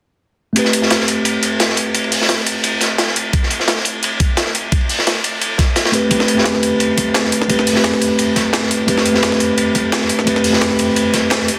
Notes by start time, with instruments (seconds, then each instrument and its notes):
0.53 tine electric piano A3 C4, closed hi-hat, ride
0.57 tine electric piano G4 B4
0.65 snare
0.73 closed hi-hat, ride
0.82 snare
0.90 snare, closed hi-hat, ride
1.00 snare
1.08 closed hi-hat, ride
1.25 closed hi-hat, ride
1.43 closed hi-hat, ride
1.60 snare, closed hi-hat, ride
1.69 snare
1.77 closed hi-hat, ride
1.94 closed hi-hat, ride
2.04 ride
2.12 closed hi-hat, open hi-hat
2.21 snare
2.29 snare, closed hi-hat, ride
2.46 closed hi-hat, ride
2.64 closed hi-hat, ride
2.81 snare, closed hi-hat, ride
2.98 snare, closed hi-hat, ride
3.07 snare
3.16 closed hi-hat, ride
3.33 kick, closed hi-hat, ride
3.43 snare
3.50 closed hi-hat, ride
3.60 snare
3.68 snare, closed hi-hat, ride
3.77 snare
3.85 closed hi-hat, ride
4.03 closed hi-hat, ride
4.20 kick, closed hi-hat, ride
4.37 snare, closed hi-hat, ride
4.46 snare
4.55 closed hi-hat, ride
4.72 kick, closed hi-hat, ride
4.81 ride
4.89 closed hi-hat, open hi-hat
4.99 snare
5.07 snare, closed hi-hat, ride
5.24 closed hi-hat, ride
5.41 closed hi-hat, ride
5.58 kick, snare, closed hi-hat, ride
5.76 snare, closed hi-hat, ride
5.85 snare, ride
5.92 tine electric piano A3 C4 G4 B4, closed hi-hat, ride
6.09 tine electric piano A3 C4 G4 B4, kick, closed hi-hat, ride
6.20 snare
6.28 closed hi-hat, ride
6.34 tine electric piano A3 C4, snare
6.38 tine electric piano G4 B4
6.44 snare, closed hi-hat, ride
6.54 snare
6.63 closed hi-hat, ride
6.80 closed hi-hat, ride
6.97 kick, closed hi-hat, ride
7.14 snare, closed hi-hat, ride
7.24 snare
7.32 closed hi-hat, ride
7.42 snare
7.48 tine electric piano A3 C4 G4 B4, kick, closed hi-hat, ride
7.59 snare, ride
7.67 closed hi-hat, open hi-hat
7.73 tine electric piano A3 C4, snare
7.77 tine electric piano G4 B4
7.84 snare, closed hi-hat, ride
7.93 snare
8.01 closed hi-hat, ride
8.19 closed hi-hat, ride
8.36 kick, snare, closed hi-hat, ride
8.53 snare, closed hi-hat, ride
8.63 snare
8.71 closed hi-hat, ride
8.86 tine electric piano A3 C4 G4 B4, kick, closed hi-hat, ride
8.97 snare
9.06 closed hi-hat, ride
9.12 tine electric piano A3 C4, snare
9.16 tine electric piano G4 B4
9.23 snare, closed hi-hat, ride
9.32 snare
9.40 closed hi-hat, ride
9.58 closed hi-hat, ride
9.75 kick, closed hi-hat, ride
9.92 snare, closed hi-hat, ride
10.01 snare
10.09 closed hi-hat, ride
10.19 snare
10.25 tine electric piano A3 C4 G4 B4, kick, closed hi-hat, ride
10.36 snare, ride
10.44 closed hi-hat, open hi-hat
10.50 tine electric piano A3 C4, snare
10.54 tine electric piano G4 B4
10.61 snare, closed hi-hat, ride
10.71 snare
10.79 closed hi-hat, ride
10.96 closed hi-hat, ride
11.14 kick, snare, closed hi-hat, ride
11.30 snare, closed hi-hat, ride
11.41 snare
11.48 closed hi-hat, ride